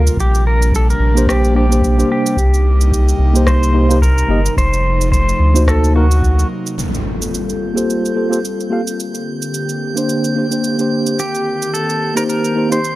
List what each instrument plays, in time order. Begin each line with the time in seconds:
Already playing: analog synth pad C3 G3 A#3 F4, pedal steel guitar A#4
0.07 shaker
0.17 analog synth bass A#1, analog synth pad C3 G3 D4, pedal steel guitar G4, kick, shaker
0.35 shaker
0.47 pedal steel guitar A#4
0.62 shaker
0.72 pedal steel guitar A4, kick, shaker
0.90 pedal steel guitar A#4, shaker
1.00 analog synth bass A#1
1.15 tine electric piano A#3 D4 G4 C5, shaker
1.27 pedal steel guitar G4, kick, cross-stick, shaker
1.44 shaker
1.54 tine electric piano A#3 D4 G4 C5, pedal steel guitar G4
1.70 tine electric piano A#3 D4 G4 C5, shaker
1.82 kick, shaker
1.97 tine electric piano A#3 D4 G4 C5, shaker
2.12 pedal steel guitar G4
2.26 shaker
2.37 analog synth bass C2, analog synth pad A#3 D#4, kick, shaker
2.54 shaker
2.81 shaker
2.92 kick, shaker
3.09 shaker
3.19 analog synth bass C2
3.34 tine electric piano A#3 D#4 G4 C5, shaker
3.47 pedal steel guitar C5, kick, cross-stick, shaker
3.63 shaker
3.73 tine electric piano A#3 D#4 G4 C5
3.89 tine electric piano A#3 D#4 G4 C5, shaker
4.02 pedal steel guitar A#4, kick, shaker
4.18 shaker
4.28 analog synth bass G1, tine electric piano A#3 D#4 G4 D#5
4.46 shaker
4.57 analog synth bass F1, analog synth pad F3 A3 D#4, pedal steel guitar C5, kick, shaker
4.73 shaker
5.01 shaker
5.12 pedal steel guitar C5, kick, shaker
5.29 shaker
5.40 analog synth bass D2
5.54 tine electric piano A#3 D#4 F#4 C5, shaker
5.67 analog synth pad F#3 A#3 D#4, pedal steel guitar A4, kick, cross-stick, shaker
5.84 shaker
5.94 tine electric piano A#3 D#4 F#4 A#4, pedal steel guitar F#4
6.11 shaker
6.22 kick, shaker
6.39 shaker
6.67 shaker
6.78 analog synth pad G3 A#3 C4 F4 A4, synth texture G6, impact, shaker
6.95 shaker
7.22 shaker
7.34 shaker
7.50 shaker
7.74 tine electric piano A#3 F4 G4 A4 C5, shaker
7.90 shaker
8.05 shaker
8.14 tine electric piano A#3 F4 G4 A4 C5
8.29 tine electric piano A#3 F4 G4 A4 C5, shaker
8.45 shaker
8.60 shaker
8.70 tine electric piano A#3 F4 G4 A4 F5
8.87 shaker
8.99 analog synth pad D3 G4, shaker
9.15 shaker
9.42 shaker
9.54 shaker
9.69 shaker
9.95 tine electric piano A#3 D4 G4 C5, shaker
10.09 shaker
10.24 shaker
10.36 tine electric piano A#3 D4 G4 C5
10.51 tine electric piano A#3 D4 G4 C5, shaker
10.64 shaker
10.78 tine electric piano A#3 D4 G4 C5, shaker
11.07 shaker
11.18 analog synth pad D#3 C4, pedal steel guitar G4, shaker
11.35 shaker
11.62 shaker
11.74 pedal steel guitar A4, shaker
11.90 shaker
12.15 tine electric piano A#3 D#4 G4 C5, pedal steel guitar A#4, shaker
12.29 pedal steel guitar A#4, shaker
12.44 shaker
12.55 tine electric piano A#3 D#4 G4 C5
12.70 tine electric piano A#3 D#4 G4 C5, pedal steel guitar C5, shaker
12.84 shaker